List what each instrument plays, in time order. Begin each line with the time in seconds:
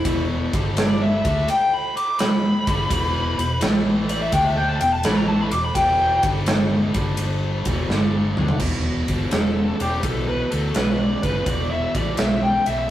Already playing: lead electric guitar E4
0.05 fingered electric bass E1, distorted electric guitar E2 B2 E3, kick, ride
0.53 fingered electric bass G1, distorted electric guitar G2 D3 G3, kick, ride
0.77 lead electric guitar D5, snare, ride
1.02 lead electric guitar E5
1.25 fingered electric bass D2, distorted electric guitar D3 A3 D4, kick, ride
1.48 lead electric guitar G5, ride
1.74 lead electric guitar B5
1.96 lead electric guitar D6, ride
2.19 lead electric guitar B5, snare, ride
2.67 fingered electric bass G1, distorted electric guitar G2 D3 G3, kick, ride
2.90 fingered electric bass E1, distorted electric guitar E2 B2 E3, kick, ride
3.39 fingered electric bass E1, distorted electric guitar E2 B2, ride
3.60 fingered electric bass A1, distorted electric guitar A2 E3 A3, snare, ride
4.09 lead electric guitar D5, ride
4.22 lead electric guitar E5
4.32 fingered electric bass D2, distorted electric guitar D3 A3 D4, lead electric guitar G5, kick, ride
4.44 lead electric guitar E5
4.57 lead electric guitar G5
4.69 lead electric guitar A5
4.81 fingered electric bass E1, distorted electric guitar E2 B2, lead electric guitar G5, ride
4.93 lead electric guitar A5
5.03 fingered electric bass A1, distorted electric guitar A2 E3 A3, lead electric guitar B5, snare, ride
5.17 lead electric guitar A#5
5.28 lead electric guitar A5
5.41 lead electric guitar B5
5.52 fingered electric bass E1, distorted electric guitar E2 B2, lead electric guitar D6, ride
5.64 lead electric guitar B5
5.75 fingered electric bass E1, distorted electric guitar E2 B2 E3, lead electric guitar G5, kick, ride
6.23 fingered electric bass G1, distorted electric guitar G2 D3 G3, kick, ride
6.46 snare, ride
6.94 fingered electric bass G1, distorted electric guitar G2 D3 G3, kick, ride
7.17 ride
7.65 fingered electric bass E1, distorted electric guitar E2 B2 E3, kick, ride
7.89 fingered electric bass G1, distorted electric guitar G2 D3 G3, snare
8.37 fingered electric bass D2, distorted electric guitar D3 A3 D4, mid tom
8.48 floor tom
8.60 fingered electric bass E1, distorted electric guitar E2 B2, kick, crash
9.08 fingered electric bass G1, distorted electric guitar E2 B2, kick, ride
9.31 fingered electric bass E1, distorted electric guitar E2 C#3, lead electric guitar A4, snare, ride
9.80 fingered electric bass E1, distorted electric guitar E2 C#3, lead electric guitar G4, ride
10.02 fingered electric bass B1, distorted electric guitar E2 B2, lead electric guitar A4, kick, ride
10.28 lead electric guitar B4
10.50 fingered electric bass D2, distorted electric guitar E2 B2, lead electric guitar A4, ride
10.74 fingered electric bass B1, distorted electric guitar E2 C#3, lead electric guitar B4, snare, ride
10.99 lead electric guitar D5
11.22 fingered electric bass G1, distorted electric guitar E2 C#3, lead electric guitar B4, kick, ride
11.46 fingered electric bass E1, distorted electric guitar E2 B2, lead electric guitar D5, kick, ride
11.71 lead electric guitar E5
11.95 fingered electric bass A1, distorted electric guitar E2 B2, lead electric guitar D5, kick, ride
12.17 fingered electric bass B1, distorted electric guitar E2 C#3, lead electric guitar E5, snare, ride
12.43 lead electric guitar G5
12.66 fingered electric bass B1, distorted electric guitar E2 C#3, lead electric guitar E5, ride